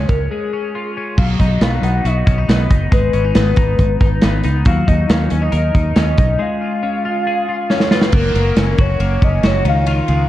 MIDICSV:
0, 0, Header, 1, 5, 480
1, 0, Start_track
1, 0, Key_signature, 6, "major"
1, 0, Tempo, 434468
1, 1307, Time_signature, 4, 2, 24, 8
1, 11367, End_track
2, 0, Start_track
2, 0, Title_t, "Soft synth lead"
2, 0, Program_c, 0, 80
2, 93, Note_on_c, 0, 70, 90
2, 203, Note_off_c, 0, 70, 0
2, 329, Note_on_c, 0, 68, 86
2, 1015, Note_off_c, 0, 68, 0
2, 1293, Note_on_c, 0, 77, 97
2, 1404, Note_off_c, 0, 77, 0
2, 1535, Note_on_c, 0, 75, 92
2, 1793, Note_on_c, 0, 77, 96
2, 1810, Note_off_c, 0, 75, 0
2, 2031, Note_on_c, 0, 78, 116
2, 2047, Note_off_c, 0, 77, 0
2, 2273, Note_on_c, 0, 75, 94
2, 2289, Note_off_c, 0, 78, 0
2, 2992, Note_off_c, 0, 75, 0
2, 3231, Note_on_c, 0, 71, 99
2, 3454, Note_off_c, 0, 71, 0
2, 3468, Note_on_c, 0, 71, 109
2, 3692, Note_off_c, 0, 71, 0
2, 3703, Note_on_c, 0, 71, 87
2, 4863, Note_off_c, 0, 71, 0
2, 5149, Note_on_c, 0, 77, 111
2, 5394, Note_on_c, 0, 75, 98
2, 5411, Note_off_c, 0, 77, 0
2, 5633, Note_on_c, 0, 77, 94
2, 5649, Note_off_c, 0, 75, 0
2, 5871, Note_off_c, 0, 77, 0
2, 5971, Note_on_c, 0, 75, 93
2, 6110, Note_off_c, 0, 75, 0
2, 6136, Note_on_c, 0, 75, 107
2, 6570, Note_off_c, 0, 75, 0
2, 6610, Note_on_c, 0, 75, 94
2, 7088, Note_on_c, 0, 77, 108
2, 7104, Note_off_c, 0, 75, 0
2, 8507, Note_off_c, 0, 77, 0
2, 8514, Note_on_c, 0, 73, 91
2, 8770, Note_on_c, 0, 71, 97
2, 8786, Note_off_c, 0, 73, 0
2, 8998, Note_off_c, 0, 71, 0
2, 9019, Note_on_c, 0, 70, 94
2, 9731, Note_on_c, 0, 73, 111
2, 9747, Note_off_c, 0, 70, 0
2, 10212, Note_on_c, 0, 75, 100
2, 10228, Note_off_c, 0, 73, 0
2, 10462, Note_on_c, 0, 73, 102
2, 10479, Note_off_c, 0, 75, 0
2, 10682, Note_off_c, 0, 73, 0
2, 10696, Note_on_c, 0, 77, 126
2, 10902, Note_off_c, 0, 77, 0
2, 10930, Note_on_c, 0, 77, 113
2, 11367, Note_off_c, 0, 77, 0
2, 11367, End_track
3, 0, Start_track
3, 0, Title_t, "Clean electric guitar"
3, 0, Program_c, 1, 27
3, 0, Note_on_c, 1, 56, 56
3, 0, Note_on_c, 1, 65, 55
3, 107, Note_on_c, 1, 61, 48
3, 331, Note_off_c, 1, 56, 0
3, 344, Note_on_c, 1, 56, 51
3, 573, Note_off_c, 1, 61, 0
3, 587, Note_on_c, 1, 61, 52
3, 815, Note_off_c, 1, 65, 0
3, 828, Note_on_c, 1, 65, 55
3, 1059, Note_off_c, 1, 61, 0
3, 1072, Note_on_c, 1, 61, 53
3, 1303, Note_on_c, 1, 54, 72
3, 1355, Note_off_c, 1, 56, 0
3, 1356, Note_off_c, 1, 65, 0
3, 1358, Note_off_c, 1, 61, 0
3, 1550, Note_on_c, 1, 63, 55
3, 1783, Note_on_c, 1, 59, 61
3, 2020, Note_off_c, 1, 63, 0
3, 2025, Note_on_c, 1, 63, 51
3, 2267, Note_on_c, 1, 66, 55
3, 2496, Note_off_c, 1, 63, 0
3, 2500, Note_on_c, 1, 61, 59
3, 2629, Note_off_c, 1, 61, 0
3, 2629, Note_on_c, 1, 63, 45
3, 2742, Note_off_c, 1, 59, 0
3, 2746, Note_on_c, 1, 59, 55
3, 2974, Note_off_c, 1, 63, 0
3, 2987, Note_on_c, 1, 63, 64
3, 3218, Note_off_c, 1, 54, 0
3, 3223, Note_on_c, 1, 56, 83
3, 3277, Note_off_c, 1, 59, 0
3, 3277, Note_off_c, 1, 66, 0
3, 3458, Note_off_c, 1, 63, 0
3, 3462, Note_on_c, 1, 61, 61
3, 3587, Note_off_c, 1, 61, 0
3, 3587, Note_on_c, 1, 63, 49
3, 3707, Note_on_c, 1, 59, 53
3, 3927, Note_off_c, 1, 63, 0
3, 3941, Note_on_c, 1, 63, 52
3, 4421, Note_off_c, 1, 63, 0
3, 4425, Note_on_c, 1, 63, 56
3, 4661, Note_off_c, 1, 59, 0
3, 4674, Note_on_c, 1, 59, 59
3, 4896, Note_off_c, 1, 63, 0
3, 4909, Note_on_c, 1, 63, 60
3, 5147, Note_off_c, 1, 56, 0
3, 5152, Note_on_c, 1, 54, 90
3, 5198, Note_off_c, 1, 63, 0
3, 5200, Note_off_c, 1, 59, 0
3, 5385, Note_on_c, 1, 63, 65
3, 5630, Note_on_c, 1, 61, 59
3, 5863, Note_off_c, 1, 63, 0
3, 5867, Note_off_c, 1, 61, 0
3, 5867, Note_on_c, 1, 61, 61
3, 5985, Note_off_c, 1, 61, 0
3, 5985, Note_on_c, 1, 63, 50
3, 6099, Note_on_c, 1, 70, 72
3, 6335, Note_off_c, 1, 63, 0
3, 6348, Note_on_c, 1, 63, 60
3, 6583, Note_on_c, 1, 61, 66
3, 6813, Note_off_c, 1, 63, 0
3, 6826, Note_on_c, 1, 63, 62
3, 7052, Note_off_c, 1, 54, 0
3, 7057, Note_on_c, 1, 56, 83
3, 7112, Note_off_c, 1, 70, 0
3, 7115, Note_off_c, 1, 63, 0
3, 7303, Note_on_c, 1, 65, 54
3, 7538, Note_off_c, 1, 61, 0
3, 7543, Note_on_c, 1, 61, 63
3, 7776, Note_off_c, 1, 65, 0
3, 7790, Note_on_c, 1, 65, 60
3, 8030, Note_on_c, 1, 68, 62
3, 8256, Note_off_c, 1, 65, 0
3, 8270, Note_on_c, 1, 65, 55
3, 8504, Note_off_c, 1, 61, 0
3, 8509, Note_on_c, 1, 61, 63
3, 8728, Note_off_c, 1, 65, 0
3, 8741, Note_on_c, 1, 65, 62
3, 8980, Note_off_c, 1, 56, 0
3, 8980, Note_off_c, 1, 61, 0
3, 8984, Note_on_c, 1, 58, 80
3, 8990, Note_off_c, 1, 68, 0
3, 8995, Note_on_c, 1, 66, 62
3, 9031, Note_off_c, 1, 65, 0
3, 9209, Note_off_c, 1, 58, 0
3, 9222, Note_on_c, 1, 58, 62
3, 9469, Note_on_c, 1, 61, 59
3, 9693, Note_off_c, 1, 66, 0
3, 9706, Note_on_c, 1, 66, 70
3, 9935, Note_off_c, 1, 58, 0
3, 9948, Note_on_c, 1, 58, 61
3, 10178, Note_off_c, 1, 61, 0
3, 10183, Note_on_c, 1, 61, 60
3, 10416, Note_off_c, 1, 66, 0
3, 10430, Note_on_c, 1, 66, 71
3, 10659, Note_on_c, 1, 51, 81
3, 10712, Note_off_c, 1, 58, 0
3, 10713, Note_off_c, 1, 66, 0
3, 10901, Note_off_c, 1, 51, 0
3, 10906, Note_on_c, 1, 51, 84
3, 10914, Note_on_c, 1, 65, 72
3, 10939, Note_off_c, 1, 61, 0
3, 11146, Note_on_c, 1, 56, 60
3, 11367, Note_off_c, 1, 51, 0
3, 11367, Note_off_c, 1, 56, 0
3, 11367, Note_off_c, 1, 65, 0
3, 11367, End_track
4, 0, Start_track
4, 0, Title_t, "Fingered electric bass"
4, 0, Program_c, 2, 33
4, 98, Note_on_c, 2, 37, 85
4, 297, Note_off_c, 2, 37, 0
4, 1301, Note_on_c, 2, 35, 84
4, 1500, Note_off_c, 2, 35, 0
4, 1544, Note_on_c, 2, 35, 87
4, 1742, Note_off_c, 2, 35, 0
4, 1780, Note_on_c, 2, 35, 106
4, 1980, Note_off_c, 2, 35, 0
4, 2014, Note_on_c, 2, 35, 86
4, 2217, Note_off_c, 2, 35, 0
4, 2260, Note_on_c, 2, 35, 90
4, 2461, Note_off_c, 2, 35, 0
4, 2508, Note_on_c, 2, 35, 97
4, 2705, Note_off_c, 2, 35, 0
4, 2747, Note_on_c, 2, 35, 89
4, 2945, Note_off_c, 2, 35, 0
4, 2989, Note_on_c, 2, 30, 66
4, 3186, Note_off_c, 2, 30, 0
4, 3227, Note_on_c, 2, 32, 103
4, 3425, Note_off_c, 2, 32, 0
4, 3468, Note_on_c, 2, 32, 93
4, 3666, Note_off_c, 2, 32, 0
4, 3713, Note_on_c, 2, 32, 111
4, 3909, Note_off_c, 2, 32, 0
4, 3949, Note_on_c, 2, 32, 81
4, 4147, Note_off_c, 2, 32, 0
4, 4185, Note_on_c, 2, 32, 100
4, 4384, Note_off_c, 2, 32, 0
4, 4428, Note_on_c, 2, 32, 86
4, 4626, Note_off_c, 2, 32, 0
4, 4679, Note_on_c, 2, 32, 90
4, 4873, Note_off_c, 2, 32, 0
4, 4915, Note_on_c, 2, 37, 90
4, 5110, Note_off_c, 2, 37, 0
4, 5146, Note_on_c, 2, 39, 108
4, 5345, Note_off_c, 2, 39, 0
4, 5391, Note_on_c, 2, 39, 103
4, 5588, Note_off_c, 2, 39, 0
4, 5634, Note_on_c, 2, 39, 98
4, 5829, Note_off_c, 2, 39, 0
4, 5874, Note_on_c, 2, 39, 92
4, 6069, Note_off_c, 2, 39, 0
4, 6106, Note_on_c, 2, 39, 112
4, 6304, Note_off_c, 2, 39, 0
4, 6346, Note_on_c, 2, 39, 92
4, 6544, Note_off_c, 2, 39, 0
4, 6587, Note_on_c, 2, 39, 94
4, 6785, Note_off_c, 2, 39, 0
4, 6826, Note_on_c, 2, 35, 82
4, 7024, Note_off_c, 2, 35, 0
4, 8984, Note_on_c, 2, 30, 111
4, 9181, Note_off_c, 2, 30, 0
4, 9214, Note_on_c, 2, 30, 98
4, 9415, Note_off_c, 2, 30, 0
4, 9461, Note_on_c, 2, 30, 105
4, 9659, Note_off_c, 2, 30, 0
4, 9707, Note_on_c, 2, 30, 87
4, 9902, Note_off_c, 2, 30, 0
4, 9944, Note_on_c, 2, 30, 89
4, 10140, Note_off_c, 2, 30, 0
4, 10186, Note_on_c, 2, 30, 105
4, 10381, Note_off_c, 2, 30, 0
4, 10421, Note_on_c, 2, 30, 94
4, 10618, Note_off_c, 2, 30, 0
4, 10661, Note_on_c, 2, 37, 94
4, 11054, Note_off_c, 2, 37, 0
4, 11145, Note_on_c, 2, 37, 89
4, 11339, Note_off_c, 2, 37, 0
4, 11367, End_track
5, 0, Start_track
5, 0, Title_t, "Drums"
5, 96, Note_on_c, 9, 42, 80
5, 99, Note_on_c, 9, 36, 93
5, 206, Note_off_c, 9, 42, 0
5, 210, Note_off_c, 9, 36, 0
5, 1302, Note_on_c, 9, 36, 108
5, 1305, Note_on_c, 9, 49, 85
5, 1413, Note_off_c, 9, 36, 0
5, 1416, Note_off_c, 9, 49, 0
5, 1543, Note_on_c, 9, 36, 75
5, 1546, Note_on_c, 9, 38, 30
5, 1549, Note_on_c, 9, 42, 65
5, 1654, Note_off_c, 9, 36, 0
5, 1656, Note_off_c, 9, 38, 0
5, 1659, Note_off_c, 9, 42, 0
5, 1781, Note_on_c, 9, 42, 92
5, 1784, Note_on_c, 9, 38, 110
5, 1891, Note_off_c, 9, 42, 0
5, 1895, Note_off_c, 9, 38, 0
5, 2025, Note_on_c, 9, 42, 86
5, 2135, Note_off_c, 9, 42, 0
5, 2267, Note_on_c, 9, 42, 73
5, 2378, Note_off_c, 9, 42, 0
5, 2508, Note_on_c, 9, 36, 95
5, 2511, Note_on_c, 9, 42, 72
5, 2618, Note_off_c, 9, 36, 0
5, 2622, Note_off_c, 9, 42, 0
5, 2751, Note_on_c, 9, 42, 89
5, 2756, Note_on_c, 9, 38, 99
5, 2862, Note_off_c, 9, 42, 0
5, 2867, Note_off_c, 9, 38, 0
5, 2988, Note_on_c, 9, 42, 70
5, 2990, Note_on_c, 9, 36, 87
5, 3099, Note_off_c, 9, 42, 0
5, 3100, Note_off_c, 9, 36, 0
5, 3226, Note_on_c, 9, 42, 97
5, 3227, Note_on_c, 9, 36, 112
5, 3337, Note_off_c, 9, 36, 0
5, 3337, Note_off_c, 9, 42, 0
5, 3463, Note_on_c, 9, 42, 65
5, 3573, Note_off_c, 9, 42, 0
5, 3702, Note_on_c, 9, 42, 100
5, 3705, Note_on_c, 9, 38, 120
5, 3812, Note_off_c, 9, 42, 0
5, 3816, Note_off_c, 9, 38, 0
5, 3937, Note_on_c, 9, 42, 85
5, 3946, Note_on_c, 9, 36, 99
5, 4047, Note_off_c, 9, 42, 0
5, 4057, Note_off_c, 9, 36, 0
5, 4184, Note_on_c, 9, 42, 78
5, 4187, Note_on_c, 9, 36, 80
5, 4295, Note_off_c, 9, 42, 0
5, 4298, Note_off_c, 9, 36, 0
5, 4425, Note_on_c, 9, 42, 72
5, 4428, Note_on_c, 9, 36, 92
5, 4536, Note_off_c, 9, 42, 0
5, 4539, Note_off_c, 9, 36, 0
5, 4657, Note_on_c, 9, 42, 92
5, 4662, Note_on_c, 9, 38, 106
5, 4768, Note_off_c, 9, 42, 0
5, 4773, Note_off_c, 9, 38, 0
5, 4900, Note_on_c, 9, 42, 74
5, 5010, Note_off_c, 9, 42, 0
5, 5140, Note_on_c, 9, 42, 96
5, 5146, Note_on_c, 9, 36, 107
5, 5250, Note_off_c, 9, 42, 0
5, 5257, Note_off_c, 9, 36, 0
5, 5390, Note_on_c, 9, 36, 67
5, 5392, Note_on_c, 9, 42, 77
5, 5500, Note_off_c, 9, 36, 0
5, 5502, Note_off_c, 9, 42, 0
5, 5629, Note_on_c, 9, 42, 98
5, 5632, Note_on_c, 9, 38, 115
5, 5739, Note_off_c, 9, 42, 0
5, 5743, Note_off_c, 9, 38, 0
5, 5858, Note_on_c, 9, 42, 84
5, 5969, Note_off_c, 9, 42, 0
5, 6100, Note_on_c, 9, 42, 77
5, 6211, Note_off_c, 9, 42, 0
5, 6349, Note_on_c, 9, 36, 88
5, 6349, Note_on_c, 9, 42, 71
5, 6460, Note_off_c, 9, 36, 0
5, 6460, Note_off_c, 9, 42, 0
5, 6581, Note_on_c, 9, 42, 93
5, 6586, Note_on_c, 9, 38, 106
5, 6692, Note_off_c, 9, 42, 0
5, 6697, Note_off_c, 9, 38, 0
5, 6822, Note_on_c, 9, 42, 80
5, 6828, Note_on_c, 9, 36, 92
5, 6932, Note_off_c, 9, 42, 0
5, 6938, Note_off_c, 9, 36, 0
5, 8507, Note_on_c, 9, 38, 57
5, 8618, Note_off_c, 9, 38, 0
5, 8620, Note_on_c, 9, 38, 61
5, 8731, Note_off_c, 9, 38, 0
5, 8739, Note_on_c, 9, 38, 81
5, 8849, Note_off_c, 9, 38, 0
5, 8856, Note_on_c, 9, 38, 96
5, 8966, Note_off_c, 9, 38, 0
5, 8975, Note_on_c, 9, 49, 109
5, 8982, Note_on_c, 9, 36, 113
5, 9085, Note_off_c, 9, 49, 0
5, 9093, Note_off_c, 9, 36, 0
5, 9226, Note_on_c, 9, 38, 33
5, 9229, Note_on_c, 9, 51, 60
5, 9337, Note_off_c, 9, 38, 0
5, 9339, Note_off_c, 9, 51, 0
5, 9462, Note_on_c, 9, 51, 86
5, 9466, Note_on_c, 9, 38, 122
5, 9573, Note_off_c, 9, 51, 0
5, 9577, Note_off_c, 9, 38, 0
5, 9702, Note_on_c, 9, 51, 75
5, 9706, Note_on_c, 9, 36, 109
5, 9813, Note_off_c, 9, 51, 0
5, 9817, Note_off_c, 9, 36, 0
5, 9943, Note_on_c, 9, 51, 70
5, 10053, Note_off_c, 9, 51, 0
5, 10188, Note_on_c, 9, 36, 94
5, 10192, Note_on_c, 9, 51, 55
5, 10299, Note_off_c, 9, 36, 0
5, 10303, Note_off_c, 9, 51, 0
5, 10422, Note_on_c, 9, 51, 70
5, 10427, Note_on_c, 9, 38, 95
5, 10533, Note_off_c, 9, 51, 0
5, 10538, Note_off_c, 9, 38, 0
5, 10664, Note_on_c, 9, 51, 70
5, 10774, Note_off_c, 9, 51, 0
5, 10901, Note_on_c, 9, 51, 80
5, 11011, Note_off_c, 9, 51, 0
5, 11138, Note_on_c, 9, 51, 58
5, 11248, Note_off_c, 9, 51, 0
5, 11367, End_track
0, 0, End_of_file